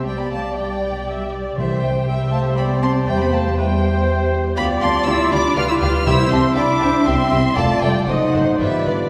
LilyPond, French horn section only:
\new Staff \with { instrumentName = "French horn section" } { \time 3/4 \key c \major \tempo 4 = 120 << { g'4 g'2 | g'4 g'2 | g'4 g'2 | f'2. |
e'2. | f'4 dis'4 f'4 | } \\ { g4 g2 | g4 g2 | g4 g2 | g2.~ |
g2. | a4 a4 g4 | } >> }